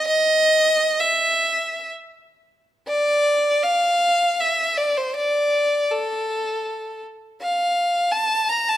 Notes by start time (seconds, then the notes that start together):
0.07 D#5
1.00 E5
2.88 D5
3.63 F5
4.40 E5
4.77 D5
4.97 C5
5.16 D5
5.91 A4
7.41 F5
8.12 A5
8.49 A#5
8.69 A5